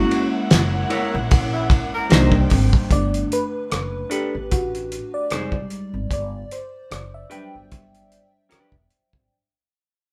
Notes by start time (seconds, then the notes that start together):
Already playing: F#3 G#3 A#3 C#4 E4 F#4 A#4 C#5 F#5
0.11 ride
0.51 F#1, muted clean electric guitar stroke, snare, ride
0.90 E4 A#4 C#5, ride
1.14 A#1
1.31 kick, ride
1.53 E3 E4
1.70 kick, ride
1.93 A#3 A#4
2.09 C2 D#3 G3 A#3 D4 D#4 A#4 C5 G5, snare, ride
2.14 D#4
2.32 kick
2.50 G#1, kick, open hi-hat, ride
2.73 kick
2.91 G1 D3 A3 D4 D5, kick, closed hi-hat
3.14 closed hi-hat
3.32 B4, closed hi-hat
3.70 F#1, muted clean electric guitar stroke, cross-stick, closed hi-hat
4.10 D4 G4 A4 B4, closed hi-hat
4.35 A1
4.51 F#4, kick, closed hi-hat
4.75 closed hi-hat
4.92 closed hi-hat
5.14 D5
5.30 F1 G3 G#3 D#4 G#4 C5, cross-stick, closed hi-hat
5.52 kick
5.70 closed hi-hat
5.94 G#1
6.11 G1 D5, kick, closed hi-hat
6.51 C5, closed hi-hat
6.91 F#1 D5, muted clean electric guitar stroke, cross-stick, closed hi-hat
7.14 E5
7.30 F#3 G3 D4 G4 B4 G5, closed hi-hat
7.55 G1
7.72 kick, closed hi-hat
7.95 closed hi-hat
8.12 closed hi-hat
8.49 D4 G4 B4, muted upright bass stroke, cross-stick, closed hi-hat
8.72 E1, kick
8.90 closed hi-hat
9.13 G#1, kick